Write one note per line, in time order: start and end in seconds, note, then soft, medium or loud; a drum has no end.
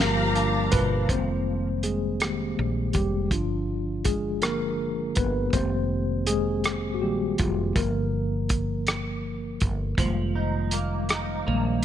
0.00 0.69 G1 medium
0.00 1.10 G2 medium
0.00 1.10 D3 medium
0.00 0.72 F3 medium
0.00 1.10 F3 soft
0.00 1.11 A#3 medium
0.00 1.67 A#3 medium
0.00 0.34 D4 medium
0.00 0.69 F4 medium
0.00 1.07 G4 medium
0.00 0.74 A#4 medium
0.00 0.68 F5 loud
0.00 1.07 F5 medium
0.00 1.07 A#5 medium
0.35 1.17 D4 medium
0.35 closed hi-hat soft
0.72 1.06 G1 medium
0.72 1.08 B2 medium
0.72 1.67 F3 medium
0.72 1.10 B4 loud
0.72 kick medium
0.72 closed hi-hat medium
1.09 2.54 F1 medium
1.09 1.59 D#3 soft
1.09 1.59 G3 soft
1.09 1.59 G#3 soft
1.09 1.59 A#3 medium
1.09 1.80 C4 medium
1.09 1.86 C5 medium
1.09 kick medium
1.09 closed hi-hat medium
1.83 2.21 G#3 medium
1.83 2.53 G#4 medium
1.83 closed hi-hat medium
2.20 2.54 D#3 soft
2.20 2.55 G#3 soft
2.20 2.55 A#3 soft
2.20 2.54 G4 soft
2.20 cross-stick medium
2.20 closed hi-hat medium
2.59 2.91 A#1 medium
2.93 3.32 F1 medium
2.93 3.30 G3 medium
2.93 3.32 G4 medium
2.93 kick medium
2.93 closed hi-hat medium
3.31 5.13 G1 medium
3.31 4.42 D3 soft
3.31 4.02 F3 medium
3.31 5.50 D4 medium
3.31 4.01 F4 medium
3.31 kick medium
3.31 closed hi-hat medium
4.05 4.41 G#3 medium
4.05 4.43 G#4 medium
4.05 kick medium
4.05 closed hi-hat medium
4.42 4.76 D3 soft
4.42 4.77 F3 soft
4.42 5.14 A#3 medium
4.42 5.13 A#4 medium
4.42 cross-stick loud
4.42 closed hi-hat medium
5.15 5.50 G1 medium
5.15 5.52 B3 medium
5.15 5.55 B4 medium
5.15 kick medium
5.15 closed hi-hat medium
5.53 7.03 F1 loud
5.53 6.61 D#3 soft
5.53 6.28 G#3 soft
5.53 6.62 A#3 medium
5.53 6.25 C4 medium
5.53 6.61 G4 soft
5.53 6.30 C5 medium
5.53 kick medium
5.53 closed hi-hat medium
6.26 6.91 G#3 medium
6.26 6.90 G#4 medium
6.26 closed hi-hat medium
6.64 cross-stick medium
6.64 closed hi-hat medium
6.94 7.01 F#4 medium
7.02 7.36 A#1 medium
7.02 7.35 D#3 soft
7.02 7.37 G3 medium
7.02 7.36 G#3 soft
7.02 7.36 A#3 medium
7.02 7.40 G4 medium
7.38 7.73 F1 medium
7.38 7.74 F3 medium
7.38 7.77 F4 medium
7.38 kick medium
7.38 closed hi-hat medium
7.76 9.57 G1 loud
7.76 9.94 D3 soft
7.76 9.95 F3 soft
7.76 8.84 A#3 medium
7.76 8.83 A#4 medium
7.76 kick medium
7.76 closed hi-hat medium
8.49 kick medium
8.49 closed hi-hat medium
8.87 cross-stick loud
8.87 closed hi-hat medium
9.60 9.95 G1 medium
9.60 kick medium
9.60 closed hi-hat medium
9.98 11.42 F1 medium
9.98 11.06 D#3 soft
9.98 11.85 F3 medium
9.98 11.06 G3 soft
9.98 11.06 G#3 soft
9.98 11.06 A#3 soft
9.98 kick medium
9.98 closed hi-hat medium
10.35 11.08 D#4 soft
10.71 11.46 A#3 medium
10.71 closed hi-hat medium
11.09 11.82 D#4 medium
11.09 cross-stick loud
11.09 closed hi-hat medium
11.47 11.80 A#1 medium
11.47 11.80 D#3 soft
11.47 11.80 G3 soft
11.47 11.81 G#3 soft
11.47 11.85 A#3 medium
11.47 11.81 A#3 medium